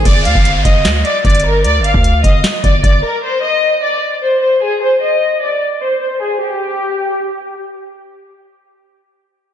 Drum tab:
HH |x---x---x---x---x---x---xxxx----|x---x---x---x---x---x---x-------|--------------------------------|--------------------------------|
CP |----------------x---------------|----------------x---------------|--------------------------------|--------------------------------|
SD |----------------o---------------|----------------o---------------|--------------------------------|--------------------------------|
BD |o-----o-----o-----------o-------|------o-----o-------o---o-------|--------------------------------|--------------------------------|

HH |--------------------------------|--------------------------------|
CP |--------------------------------|--------------------------------|
SD |--------------------------------|--------------------------------|
BD |--------------------------------|--------------------------------|